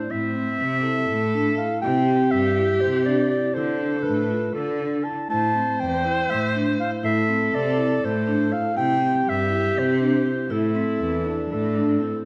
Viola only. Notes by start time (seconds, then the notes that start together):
0.10 C4
0.84 A4
1.83 G4
3.56 A4
5.30 C5
7.04 A4
8.69 A4
8.75 G4
10.50 E4
11.24 D4
12.01 C4